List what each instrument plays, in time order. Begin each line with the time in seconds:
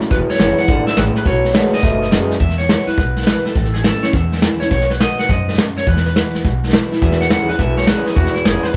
0.01 muted upright bass stroke, snare
0.10 upright bass E1, steel-string acoustic guitar E2, clean electric guitar E2 B2 B4, kick, snare
0.29 clean electric guitar C#5, muted upright bass stroke, snare
0.35 steel-string acoustic guitar E3, snare
0.39 upright bass F#1, clean electric guitar C#3, steel-string acoustic guitar G#3 B3 E4, snare, hi-hat pedal
0.58 steel-string acoustic guitar B3 E4, clean electric guitar F#5, muted upright bass stroke, snare
0.68 upright bass G#1, clean electric guitar E2 D3, steel-string acoustic guitar G#2, kick, snare
0.87 clean electric guitar E5, muted upright bass stroke, snare
0.97 upright bass A1, clean electric guitar E2 C#3 B4, steel-string acoustic guitar A2, snare, hi-hat pedal
1.15 clean electric guitar B4, muted upright bass stroke, snare
1.25 upright bass B1, clean electric guitar B2 F#3 C#5, steel-string acoustic guitar B2, kick, snare
1.45 snare
1.50 clean electric guitar B2 G#3, steel-string acoustic guitar D#3, snare
1.54 steel-string acoustic guitar A3 B3 F#4, snare, hi-hat pedal
1.72 steel-string acoustic guitar B3 F#4, clean electric guitar D#5, muted upright bass stroke, snare
1.78 snare
1.82 upright bass F#1, steel-string acoustic guitar G#2, clean electric guitar B2 A3, kick, snare
2.02 snare
2.10 steel-string acoustic guitar F#2, clean electric guitar B2 G#3, snare, hi-hat pedal
2.29 muted upright bass stroke, snare
2.40 steel-string acoustic guitar E2, upright bass E2, clean electric guitar E5, kick, snare
2.50 snare
2.58 clean electric guitar C#5, snare
2.68 steel-string acoustic guitar E3 G#3 B3 E4, snare, hi-hat pedal
2.87 steel-string acoustic guitar B3 E4, clean electric guitar B4, muted upright bass stroke, snare
2.97 upright bass B1, steel-string acoustic guitar B2, kick, snare
3.16 snare
3.22 snare
3.26 steel-string acoustic guitar E3 G#3 B3 E4, clean electric guitar B4, snare, hi-hat pedal
3.45 steel-string acoustic guitar B3 E4, clean electric guitar A4, muted upright bass stroke, snare
3.55 upright bass A1, steel-string acoustic guitar A2, kick, snare
3.65 snare
3.74 clean electric guitar G#4, snare
3.84 steel-string acoustic guitar E3 A3 C#4 E4, clean electric guitar A4, snare, hi-hat pedal
4.03 steel-string acoustic guitar C#4 E4, clean electric guitar C#5, muted upright bass stroke, snare
4.13 steel-string acoustic guitar E2, upright bass E2, clean electric guitar E5, kick, snare
4.32 snare
4.37 snare
4.42 steel-string acoustic guitar E3 A3 C#4 E4, snare, hi-hat pedal
4.60 steel-string acoustic guitar C#4 E4, clean electric guitar C#5, muted upright bass stroke, snare
4.71 upright bass B1, steel-string acoustic guitar B2, clean electric guitar C#5, kick, snare
4.81 snare
4.90 clean electric guitar B4, snare
5.00 steel-string acoustic guitar D#3 A3 B3 F#4, clean electric guitar D#5, snare, hi-hat pedal
5.18 clean electric guitar F#5, muted upright bass stroke, snare
5.29 upright bass F#2, steel-string acoustic guitar G#2, clean electric guitar D#5, kick, snare
5.48 snare
5.54 snare
5.58 steel-string acoustic guitar F#2, snare, hi-hat pedal
5.76 clean electric guitar C#5, muted upright bass stroke, snare
5.87 steel-string acoustic guitar E2, upright bass E2, clean electric guitar B4, kick, snare
5.97 snare
6.06 clean electric guitar B4, snare
6.15 steel-string acoustic guitar E3 G#3 B3 E4, snare, hi-hat pedal
6.34 muted upright bass stroke, snare
6.44 upright bass B1, steel-string acoustic guitar B2, kick, snare
6.64 snare
6.69 snare
6.73 steel-string acoustic guitar E3 G#3 B3 E4, snare, hi-hat pedal
6.91 steel-string acoustic guitar B3 E4, muted upright bass stroke, snare
7.01 clean electric guitar E2 B2 E5, upright bass E2, steel-string acoustic guitar E2, kick, snare
7.11 snare
7.21 clean electric guitar F#5, snare
7.30 clean electric guitar E2 C#3 F#5, steel-string acoustic guitar E3 G#3 B3 E4, snare, hi-hat pedal
7.49 steel-string acoustic guitar B3 E4, clean electric guitar B4, muted upright bass stroke, snare
7.59 upright bass B1, clean electric guitar E2 B2 E5, steel-string acoustic guitar B2, kick, snare
7.77 clean electric guitar C#5, snare
7.82 snare
7.87 clean electric guitar E2 C#3 B4, steel-string acoustic guitar E3 G#3 B3 E4, snare, hi-hat pedal
8.06 steel-string acoustic guitar B3 E4, clean electric guitar G#4, muted upright bass stroke, snare
8.15 upright bass E2, steel-string acoustic guitar E2, clean electric guitar E2 B2 F#4, kick, snare
8.26 snare
8.35 clean electric guitar E4, muted upright bass stroke, snare
8.45 upright bass F#1, clean electric guitar C#3 G#4, steel-string acoustic guitar E3 G#3 B3 E4, snare, hi-hat pedal
8.63 clean electric guitar B4, muted upright bass stroke, snare